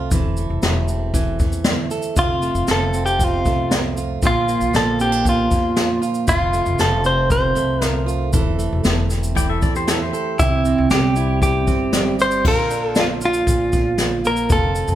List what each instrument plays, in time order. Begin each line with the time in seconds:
Already playing: steel-string acoustic guitar F2 F3 A3 C4 F4
0.11 upright bass E1, steel-string acoustic guitar E3 A4, kick, shaker
0.37 steel-string acoustic guitar A3, shaker
0.50 upright bass E1
0.62 upright bass E1, steel-string acoustic guitar A3, snare, shaker
0.88 steel-string acoustic guitar C4, shaker
1.14 steel-string acoustic guitar E3, kick, shaker
1.40 upright bass E2, steel-string acoustic guitar A3, kick, shaker
1.52 shaker
1.64 steel-string acoustic guitar A3, snare, shaker
1.91 steel-string acoustic guitar A4, shaker
2.02 shaker
2.16 upright bass F1, steel-string acoustic guitar F2 F4, clean electric guitar F4, kick, shaker
2.42 steel-string acoustic guitar A3, shaker
2.55 upright bass F1, shaker
2.68 upright bass F1, steel-string acoustic guitar F3, clean electric guitar A4, snare, shaker
2.94 steel-string acoustic guitar C4, shaker
3.06 clean electric guitar G4, shaker
3.19 steel-string acoustic guitar F2, kick, shaker
3.24 clean electric guitar F4
3.45 upright bass C2, steel-string acoustic guitar A3, kick, shaker
3.71 steel-string acoustic guitar F3, snare, shaker
3.97 steel-string acoustic guitar F4, shaker
4.22 upright bass A#1, steel-string acoustic guitar A#2 F4, kick, shaker
4.27 clean electric guitar F4
4.48 steel-string acoustic guitar A#3, shaker
4.60 upright bass A#1, shaker
4.73 upright bass A#1, steel-string acoustic guitar F3, clean electric guitar A4, snare, shaker
4.99 steel-string acoustic guitar C4, clean electric guitar G4, shaker
5.12 steel-string acoustic guitar D4, shaker
5.24 steel-string acoustic guitar A#2, kick, shaker
5.29 clean electric guitar F4
5.50 upright bass F2, steel-string acoustic guitar A#3, kick, shaker
5.76 steel-string acoustic guitar F3, snare, shaker
6.02 steel-string acoustic guitar F4, shaker
6.14 shaker
6.27 upright bass F1, steel-string acoustic guitar F2 F4, clean electric guitar F4, kick, shaker
6.53 steel-string acoustic guitar A3, shaker
6.66 upright bass F1, shaker
6.79 upright bass F1, steel-string acoustic guitar F3, clean electric guitar A4, snare, shaker
7.04 steel-string acoustic guitar C4, clean electric guitar C5, shaker
7.30 steel-string acoustic guitar F2, clean electric guitar C5, kick, shaker
7.55 upright bass C2, steel-string acoustic guitar A3, shaker
7.81 steel-string acoustic guitar F3, clean electric guitar A#4, snare, shaker
8.06 steel-string acoustic guitar F4, shaker
8.33 upright bass E1, steel-string acoustic guitar E3 A4, kick, shaker
8.59 steel-string acoustic guitar A3, shaker
8.73 upright bass E1
8.84 upright bass E1, steel-string acoustic guitar A3, snare, shaker
9.10 steel-string acoustic guitar C4, snare, shaker
9.23 shaker
9.35 steel-string acoustic guitar E3, pedal steel guitar D5 G5, kick, shaker
9.49 pedal steel guitar A4 E5
9.61 upright bass E2, steel-string acoustic guitar A3, pedal steel guitar A4 D5, kick, shaker
9.76 pedal steel guitar G4 C5, shaker
9.87 steel-string acoustic guitar A3, pedal steel guitar E4 A4, snare, shaker
10.02 pedal steel guitar G4 C5
10.13 steel-string acoustic guitar A4, shaker
10.39 upright bass C2, steel-string acoustic guitar C3 G4, clean electric guitar E4, kick, shaker
10.65 steel-string acoustic guitar C4, shaker
10.78 upright bass C2
10.90 upright bass C2, steel-string acoustic guitar G3, clean electric guitar G4, snare, shaker
11.16 steel-string acoustic guitar E4, shaker
11.42 steel-string acoustic guitar C3, clean electric guitar G4, kick, shaker
11.67 upright bass G1, steel-string acoustic guitar C4, kick, shaker
11.93 steel-string acoustic guitar G3, snare, shaker
12.19 steel-string acoustic guitar G4, clean electric guitar C5, shaker
12.31 shaker
12.45 upright bass A#1, steel-string acoustic guitar A#2 F4, clean electric guitar A#4, kick, crash
12.70 steel-string acoustic guitar D4, shaker
12.86 clean electric guitar A4
12.95 steel-string acoustic guitar F3, snare, shaker
13.00 clean electric guitar F4
13.21 steel-string acoustic guitar F4, shaker
13.25 clean electric guitar F4
13.34 shaker
13.47 upright bass A#1, steel-string acoustic guitar A#2, kick, shaker
13.73 kick, shaker
13.98 steel-string acoustic guitar F3, snare, shaker
14.25 steel-string acoustic guitar A#3, clean electric guitar A#4, shaker
14.37 shaker
14.50 upright bass F1, steel-string acoustic guitar F2 F4, clean electric guitar A4, kick, shaker
14.75 steel-string acoustic guitar C4, shaker
14.88 upright bass F1, shaker